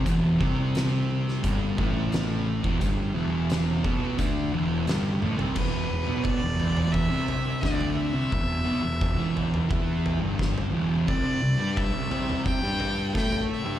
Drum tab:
CC |----------------|----------------|x---------------|----------------|
HH |x---x---x---x---|x---x---x---x---|----------------|----------------|
SD |----o--o----o---|----o-------o---|------------o---|------------o---|
T1 |----------------|--------------o-|----------------|----------------|
T2 |----------------|----------------|-------oo-------|-------oo-------|
FT |----------------|---------------o|o---o-o---o--o--|o---o-o---o--o--|
BD |o-o-----o-o----o|o-----o-o-------|o---o---o---o---|o---o---o---o---|

CC |----------------|
HH |----------------|
SD |------------o---|
T1 |----------------|
T2 |-------oo-------|
FT |o---o-o---o--o--|
BD |o---o---o---o---|